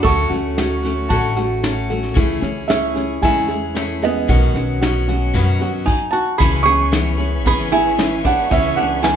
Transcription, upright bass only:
0, 0, Header, 1, 2, 480
1, 0, Start_track
1, 0, Tempo, 528634
1, 40, Time_signature, 4, 2, 24, 8
1, 8317, End_track
2, 0, Start_track
2, 0, Title_t, "Upright bass"
2, 0, Program_c, 0, 32
2, 41, Note_on_c, 0, 38, 89
2, 267, Note_off_c, 0, 38, 0
2, 272, Note_on_c, 0, 38, 78
2, 964, Note_off_c, 0, 38, 0
2, 999, Note_on_c, 0, 33, 83
2, 1929, Note_off_c, 0, 33, 0
2, 1969, Note_on_c, 0, 37, 97
2, 2197, Note_off_c, 0, 37, 0
2, 2201, Note_on_c, 0, 37, 85
2, 2890, Note_off_c, 0, 37, 0
2, 2933, Note_on_c, 0, 40, 84
2, 3857, Note_off_c, 0, 40, 0
2, 3894, Note_on_c, 0, 35, 99
2, 4119, Note_off_c, 0, 35, 0
2, 4125, Note_on_c, 0, 35, 82
2, 4813, Note_off_c, 0, 35, 0
2, 4859, Note_on_c, 0, 42, 85
2, 5312, Note_off_c, 0, 42, 0
2, 5816, Note_on_c, 0, 37, 92
2, 6777, Note_off_c, 0, 37, 0
2, 6777, Note_on_c, 0, 32, 93
2, 7692, Note_off_c, 0, 32, 0
2, 7727, Note_on_c, 0, 37, 91
2, 8317, Note_off_c, 0, 37, 0
2, 8317, End_track
0, 0, End_of_file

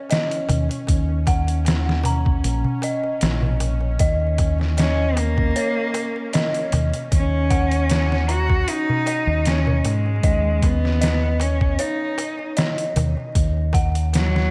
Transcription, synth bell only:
0, 0, Header, 1, 2, 480
1, 0, Start_track
1, 0, Key_signature, -6, "minor"
1, 0, Tempo, 779221
1, 543, Time_signature, 4, 2, 24, 8
1, 8936, End_track
2, 0, Start_track
2, 0, Title_t, "Synth bell"
2, 0, Program_c, 0, 98
2, 0, Control_c, 0, 64, 127
2, 0, Note_on_c, 0, 73, 73
2, 0, Note_on_c, 0, 75, 69
2, 65, Note_off_c, 0, 75, 0
2, 65, Note_on_c, 0, 75, 72
2, 762, Note_off_c, 0, 75, 0
2, 784, Note_on_c, 0, 78, 72
2, 1013, Note_off_c, 0, 78, 0
2, 1267, Note_on_c, 0, 82, 73
2, 1494, Note_off_c, 0, 82, 0
2, 1748, Note_on_c, 0, 75, 70
2, 2443, Note_off_c, 0, 75, 0
2, 2466, Note_on_c, 0, 75, 72
2, 2471, Control_c, 0, 64, 0
2, 2474, Note_off_c, 0, 73, 0
2, 2568, Control_c, 0, 64, 127
2, 2922, Note_off_c, 0, 75, 0
2, 2946, Note_on_c, 0, 75, 70
2, 3402, Note_off_c, 0, 75, 0
2, 3426, Note_on_c, 0, 73, 79
2, 3882, Note_off_c, 0, 73, 0
2, 3905, Note_on_c, 0, 75, 72
2, 4602, Note_off_c, 0, 75, 0
2, 4623, Note_on_c, 0, 78, 75
2, 4852, Note_off_c, 0, 78, 0
2, 5102, Note_on_c, 0, 82, 73
2, 5332, Note_off_c, 0, 82, 0
2, 5589, Note_on_c, 0, 75, 72
2, 6284, Note_off_c, 0, 75, 0
2, 6306, Note_on_c, 0, 75, 77
2, 6312, Control_c, 0, 64, 0
2, 6433, Control_c, 0, 64, 127
2, 6762, Note_off_c, 0, 75, 0
2, 6783, Note_on_c, 0, 75, 71
2, 7241, Note_off_c, 0, 75, 0
2, 7264, Note_on_c, 0, 73, 74
2, 7721, Note_off_c, 0, 73, 0
2, 7742, Note_on_c, 0, 75, 69
2, 8440, Note_off_c, 0, 75, 0
2, 8464, Note_on_c, 0, 78, 70
2, 8692, Note_off_c, 0, 78, 0
2, 8936, End_track
0, 0, End_of_file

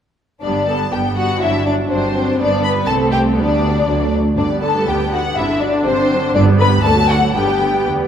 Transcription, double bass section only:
0, 0, Header, 1, 2, 480
1, 0, Start_track
1, 0, Key_signature, 1, "major"
1, 0, Tempo, 494234
1, 416, Time_signature, 2, 2, 24, 8
1, 6644, Tempo, 513259
1, 7799, End_track
2, 0, Start_track
2, 0, Title_t, "Double bass section"
2, 0, Program_c, 0, 48
2, 408, Note_on_c, 0, 31, 43
2, 840, Note_off_c, 0, 31, 0
2, 897, Note_on_c, 0, 31, 40
2, 1316, Note_off_c, 0, 31, 0
2, 1364, Note_on_c, 0, 31, 47
2, 1784, Note_off_c, 0, 31, 0
2, 1843, Note_on_c, 0, 31, 45
2, 2261, Note_off_c, 0, 31, 0
2, 2311, Note_on_c, 0, 31, 47
2, 2750, Note_off_c, 0, 31, 0
2, 2782, Note_on_c, 0, 36, 49
2, 3258, Note_off_c, 0, 36, 0
2, 3268, Note_on_c, 0, 38, 44
2, 3748, Note_off_c, 0, 38, 0
2, 3760, Note_on_c, 0, 38, 44
2, 4046, Note_off_c, 0, 38, 0
2, 4246, Note_on_c, 0, 31, 45
2, 4631, Note_off_c, 0, 31, 0
2, 4739, Note_on_c, 0, 38, 44
2, 5114, Note_off_c, 0, 38, 0
2, 5216, Note_on_c, 0, 31, 49
2, 5589, Note_off_c, 0, 31, 0
2, 5691, Note_on_c, 0, 31, 53
2, 6067, Note_off_c, 0, 31, 0
2, 6169, Note_on_c, 0, 31, 68
2, 6546, Note_off_c, 0, 31, 0
2, 6644, Note_on_c, 0, 38, 62
2, 7017, Note_off_c, 0, 38, 0
2, 7116, Note_on_c, 0, 31, 55
2, 7499, Note_off_c, 0, 31, 0
2, 7600, Note_on_c, 0, 38, 39
2, 7799, Note_off_c, 0, 38, 0
2, 7799, End_track
0, 0, End_of_file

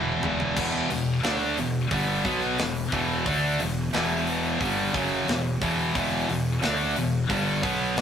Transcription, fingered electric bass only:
0, 0, Header, 1, 2, 480
1, 0, Start_track
1, 0, Key_signature, 1, "minor"
1, 0, Tempo, 674157
1, 399, Time_signature, 4, 2, 24, 8
1, 5705, End_track
2, 0, Start_track
2, 0, Title_t, "Fingered electric bass"
2, 0, Program_c, 0, 33
2, 0, Note_on_c, 0, 28, 111
2, 135, Note_off_c, 0, 28, 0
2, 160, Note_on_c, 0, 28, 85
2, 377, Note_off_c, 0, 28, 0
2, 404, Note_on_c, 0, 28, 91
2, 624, Note_off_c, 0, 28, 0
2, 640, Note_on_c, 0, 28, 85
2, 862, Note_off_c, 0, 28, 0
2, 878, Note_on_c, 0, 38, 92
2, 1101, Note_off_c, 0, 38, 0
2, 1120, Note_on_c, 0, 28, 73
2, 1342, Note_off_c, 0, 28, 0
2, 1359, Note_on_c, 0, 31, 86
2, 1582, Note_off_c, 0, 31, 0
2, 1599, Note_on_c, 0, 35, 92
2, 1822, Note_off_c, 0, 35, 0
2, 1842, Note_on_c, 0, 28, 83
2, 2063, Note_off_c, 0, 28, 0
2, 2080, Note_on_c, 0, 28, 91
2, 2302, Note_off_c, 0, 28, 0
2, 2321, Note_on_c, 0, 38, 88
2, 2543, Note_off_c, 0, 38, 0
2, 2563, Note_on_c, 0, 28, 86
2, 2784, Note_off_c, 0, 28, 0
2, 2809, Note_on_c, 0, 28, 102
2, 3255, Note_off_c, 0, 28, 0
2, 3278, Note_on_c, 0, 31, 88
2, 3501, Note_off_c, 0, 31, 0
2, 3519, Note_on_c, 0, 30, 99
2, 3742, Note_off_c, 0, 30, 0
2, 3759, Note_on_c, 0, 28, 92
2, 3982, Note_off_c, 0, 28, 0
2, 4000, Note_on_c, 0, 28, 86
2, 4222, Note_off_c, 0, 28, 0
2, 4239, Note_on_c, 0, 28, 86
2, 4462, Note_off_c, 0, 28, 0
2, 4483, Note_on_c, 0, 28, 88
2, 4704, Note_off_c, 0, 28, 0
2, 4719, Note_on_c, 0, 38, 101
2, 4942, Note_off_c, 0, 38, 0
2, 4958, Note_on_c, 0, 28, 70
2, 5181, Note_off_c, 0, 28, 0
2, 5198, Note_on_c, 0, 31, 98
2, 5421, Note_off_c, 0, 31, 0
2, 5436, Note_on_c, 0, 35, 84
2, 5660, Note_off_c, 0, 35, 0
2, 5667, Note_on_c, 0, 28, 94
2, 5705, Note_off_c, 0, 28, 0
2, 5705, End_track
0, 0, End_of_file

